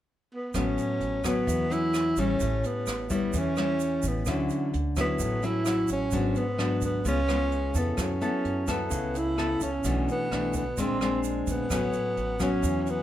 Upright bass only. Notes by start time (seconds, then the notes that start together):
0.55 A1
1.00 A1
1.48 E2
2.17 A1
2.41 A1
2.87 A1
3.34 E2
4.03 A1
4.27 D2
4.74 D2
5.20 A1
5.89 A1
6.12 G#1
6.58 G#1
7.05 C#2
7.75 F2
7.98 F#2
8.45 F#2
8.91 C#2
9.61 C#2
9.85 B1
10.31 B1
10.78 A#1
11.47 A#1
11.70 A1
12.17 A1
12.63 E2